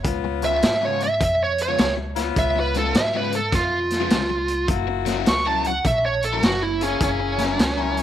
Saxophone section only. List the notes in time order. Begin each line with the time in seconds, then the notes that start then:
0.04 B3 C#4 F4
2.16 B3 C#4 F4
4.68 A#3 E4 F#4
6.80 A#3 E4 G#4